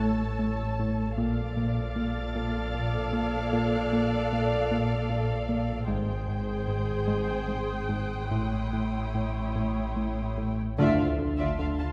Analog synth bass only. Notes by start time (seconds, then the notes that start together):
0.00 A2
0.39 A2
0.79 A2
1.18 A#2
1.57 A#2
1.96 A#2
2.35 A#2
2.74 A#2
3.13 A#2
3.53 A#2
3.93 A#2
4.33 A#2
4.71 A#2
5.10 A#2
5.49 A#2
5.88 G#2
6.28 G#2
6.68 G#2
7.07 G#2
7.48 G#2
7.89 G#2
8.31 A2
8.73 A2
9.15 A2
9.56 A2
9.96 A2
10.38 A2
10.78 D3
11.19 D3
11.59 D3